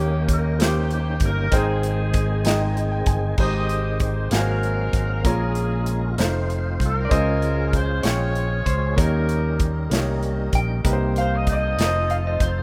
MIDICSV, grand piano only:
0, 0, Header, 1, 2, 480
1, 0, Start_track
1, 0, Key_signature, -4, "major"
1, 0, Tempo, 621762
1, 1176, Time_signature, 6, 3, 24, 8
1, 9748, End_track
2, 0, Start_track
2, 0, Title_t, "Grand piano"
2, 0, Program_c, 0, 0
2, 0, Control_c, 0, 64, 127
2, 0, Note_on_c, 0, 51, 61
2, 0, Note_on_c, 0, 58, 74
2, 0, Note_on_c, 0, 63, 71
2, 0, Note_on_c, 0, 67, 70
2, 0, Note_on_c, 0, 73, 87
2, 370, Note_off_c, 0, 58, 0
2, 373, Note_off_c, 0, 63, 0
2, 378, Note_off_c, 0, 67, 0
2, 378, Note_off_c, 0, 73, 0
2, 428, Note_off_c, 0, 51, 0
2, 453, Note_on_c, 0, 58, 60
2, 454, Note_on_c, 0, 63, 59
2, 466, Note_on_c, 0, 67, 57
2, 472, Note_on_c, 0, 72, 68
2, 1089, Note_off_c, 0, 58, 0
2, 1090, Note_off_c, 0, 63, 0
2, 1096, Note_off_c, 0, 67, 0
2, 1099, Note_off_c, 0, 72, 0
2, 1167, Note_on_c, 0, 56, 73
2, 1170, Note_on_c, 0, 63, 70
2, 1175, Note_on_c, 0, 44, 59
2, 1176, Note_on_c, 0, 79, 70
2, 1184, Note_on_c, 0, 72, 84
2, 1187, Control_c, 0, 64, 0
2, 1326, Control_c, 0, 64, 127
2, 1806, Note_off_c, 0, 56, 0
2, 1807, Note_off_c, 0, 63, 0
2, 1810, Note_off_c, 0, 79, 0
2, 1814, Note_off_c, 0, 72, 0
2, 1863, Note_off_c, 0, 44, 0
2, 1886, Note_on_c, 0, 56, 73
2, 1897, Note_on_c, 0, 63, 67
2, 1897, Note_on_c, 0, 79, 66
2, 1906, Note_on_c, 0, 75, 79
2, 2119, Note_off_c, 0, 75, 0
2, 2131, Note_on_c, 0, 75, 60
2, 2240, Note_off_c, 0, 79, 0
2, 2244, Note_off_c, 0, 75, 0
2, 2252, Note_on_c, 0, 79, 62
2, 2364, Note_off_c, 0, 79, 0
2, 2370, Note_on_c, 0, 80, 58
2, 2525, Note_off_c, 0, 56, 0
2, 2531, Note_off_c, 0, 63, 0
2, 2595, Note_off_c, 0, 80, 0
2, 2607, Note_on_c, 0, 56, 65
2, 2611, Note_on_c, 0, 63, 66
2, 2612, Note_on_c, 0, 44, 54
2, 2614, Note_on_c, 0, 67, 62
2, 2625, Control_c, 0, 64, 0
2, 2625, Note_on_c, 0, 72, 79
2, 2771, Control_c, 0, 64, 127
2, 3246, Note_off_c, 0, 56, 0
2, 3248, Note_off_c, 0, 63, 0
2, 3249, Note_off_c, 0, 67, 0
2, 3255, Note_off_c, 0, 72, 0
2, 3302, Note_off_c, 0, 44, 0
2, 3328, Note_on_c, 0, 58, 53
2, 3333, Note_on_c, 0, 77, 53
2, 3337, Note_on_c, 0, 44, 52
2, 3337, Note_on_c, 0, 66, 50
2, 3344, Note_on_c, 0, 70, 48
2, 3345, Control_c, 0, 64, 0
2, 3389, Note_off_c, 0, 70, 0
2, 3393, Note_on_c, 0, 72, 59
2, 3469, Control_c, 0, 64, 127
2, 3967, Note_off_c, 0, 58, 0
2, 3969, Note_off_c, 0, 77, 0
2, 3971, Note_off_c, 0, 66, 0
2, 3999, Note_off_c, 0, 72, 0
2, 4025, Note_off_c, 0, 44, 0
2, 4048, Note_on_c, 0, 58, 72
2, 4055, Note_on_c, 0, 46, 56
2, 4055, Note_on_c, 0, 65, 61
2, 4060, Note_on_c, 0, 68, 66
2, 4063, Note_on_c, 0, 73, 77
2, 4064, Control_c, 0, 64, 0
2, 4223, Control_c, 0, 64, 127
2, 4687, Note_off_c, 0, 58, 0
2, 4691, Note_off_c, 0, 65, 0
2, 4693, Note_off_c, 0, 68, 0
2, 4694, Note_off_c, 0, 73, 0
2, 4744, Note_off_c, 0, 46, 0
2, 4767, Note_on_c, 0, 57, 70
2, 4771, Note_on_c, 0, 63, 59
2, 4771, Note_on_c, 0, 65, 63
2, 4782, Note_on_c, 0, 72, 73
2, 4783, Control_c, 0, 64, 0
2, 4930, Control_c, 0, 64, 127
2, 5407, Note_off_c, 0, 57, 0
2, 5409, Note_off_c, 0, 63, 0
2, 5409, Note_off_c, 0, 65, 0
2, 5414, Note_off_c, 0, 72, 0
2, 5475, Note_on_c, 0, 56, 75
2, 5478, Note_on_c, 0, 61, 67
2, 5486, Note_on_c, 0, 49, 58
2, 5486, Note_on_c, 0, 65, 63
2, 5493, Note_on_c, 0, 72, 78
2, 5505, Control_c, 0, 64, 0
2, 5625, Control_c, 0, 64, 127
2, 6121, Note_off_c, 0, 56, 0
2, 6123, Note_off_c, 0, 61, 0
2, 6127, Note_off_c, 0, 65, 0
2, 6130, Note_off_c, 0, 72, 0
2, 6181, Note_off_c, 0, 49, 0
2, 6193, Note_on_c, 0, 56, 59
2, 6198, Note_on_c, 0, 61, 53
2, 6205, Note_on_c, 0, 65, 51
2, 6206, Note_on_c, 0, 79, 68
2, 6841, Note_off_c, 0, 56, 0
2, 6844, Note_off_c, 0, 61, 0
2, 6847, Note_off_c, 0, 65, 0
2, 6847, Note_off_c, 0, 79, 0
2, 6918, Note_on_c, 0, 58, 71
2, 6924, Note_on_c, 0, 51, 58
2, 6924, Note_on_c, 0, 63, 63
2, 6932, Note_on_c, 0, 67, 64
2, 6933, Note_on_c, 0, 73, 73
2, 6947, Control_c, 0, 64, 0
2, 7078, Control_c, 0, 64, 127
2, 7564, Note_off_c, 0, 58, 0
2, 7567, Note_off_c, 0, 63, 0
2, 7571, Note_off_c, 0, 67, 0
2, 7571, Note_off_c, 0, 73, 0
2, 7620, Note_off_c, 0, 51, 0
2, 7642, Note_on_c, 0, 58, 66
2, 7651, Note_on_c, 0, 63, 65
2, 7654, Note_on_c, 0, 67, 62
2, 7661, Note_on_c, 0, 73, 71
2, 8286, Note_off_c, 0, 58, 0
2, 8290, Note_off_c, 0, 63, 0
2, 8292, Note_off_c, 0, 67, 0
2, 8296, Note_off_c, 0, 73, 0
2, 8370, Note_on_c, 0, 58, 71
2, 8373, Note_on_c, 0, 63, 63
2, 8379, Note_on_c, 0, 48, 53
2, 8383, Note_on_c, 0, 67, 59
2, 8388, Control_c, 0, 64, 0
2, 8388, Note_on_c, 0, 71, 63
2, 8433, Note_off_c, 0, 71, 0
2, 8437, Note_on_c, 0, 72, 75
2, 8536, Control_c, 0, 64, 127
2, 9010, Note_off_c, 0, 58, 0
2, 9012, Note_off_c, 0, 63, 0
2, 9016, Note_off_c, 0, 67, 0
2, 9044, Note_off_c, 0, 72, 0
2, 9068, Note_off_c, 0, 48, 0
2, 9095, Note_on_c, 0, 57, 55
2, 9101, Note_on_c, 0, 63, 50
2, 9107, Control_c, 0, 64, 0
2, 9108, Note_on_c, 0, 65, 53
2, 9114, Note_on_c, 0, 70, 48
2, 9156, Note_off_c, 0, 70, 0
2, 9160, Note_on_c, 0, 72, 65
2, 9264, Control_c, 0, 64, 127
2, 9733, Note_off_c, 0, 57, 0
2, 9735, Note_off_c, 0, 63, 0
2, 9739, Note_off_c, 0, 65, 0
2, 9748, Note_off_c, 0, 72, 0
2, 9748, End_track
0, 0, End_of_file